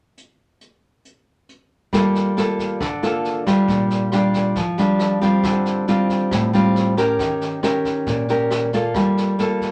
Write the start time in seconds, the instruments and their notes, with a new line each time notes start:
0.18 closed hi-hat
0.61 closed hi-hat
1.05 closed hi-hat
1.49 closed hi-hat
1.93 nylon-string guitar G3 A#3 F4 A4, kick, cross-stick, snare
2.15 snare
2.37 nylon-string guitar A#3 F4 A4, snare
2.59 kick, snare
2.81 nylon-string guitar D3, kick, cross-stick, snare
3.03 nylon-string guitar A#3 F4 A4, snare
3.25 snare
3.46 nylon-string guitar G3 D4 F4, kick, cross-stick, snare
3.68 nylon-string guitar A#2, kick, snare
3.90 snare
4.12 nylon-string guitar G3 D4 F4, cross-stick, snare
4.34 kick, snare
4.55 nylon-string guitar F3, kick, snare
4.78 nylon-string guitar G3 D4 F4, snare
4.99 cross-stick, snare
5.21 nylon-string guitar G3 C4 F4, kick, snare
5.43 nylon-string guitar D3, kick, cross-stick, snare
5.65 snare
5.88 nylon-string guitar G3 C4 F4, snare
6.09 kick, snare
6.31 nylon-string guitar A2, kick, cross-stick, snare
6.53 nylon-string guitar G3 C4 F4, snare
6.76 snare
6.97 nylon-string guitar C#4 G4 A#4, kick, cross-stick, snare
7.19 nylon-string guitar D#3, kick, snare
7.41 snare
7.63 nylon-string guitar C#4 G4 A#4, cross-stick, snare
7.85 kick, snare
8.06 nylon-string guitar A#2, kick, snare
8.29 nylon-string guitar C#4 G4 A#4, snare
8.50 cross-stick, snare
8.73 nylon-string guitar A#3 F4 A4, kick, snare
8.94 nylon-string guitar G3, kick, cross-stick, snare
9.17 snare
9.39 nylon-string guitar A#3 F4 A4, snare
9.61 kick, snare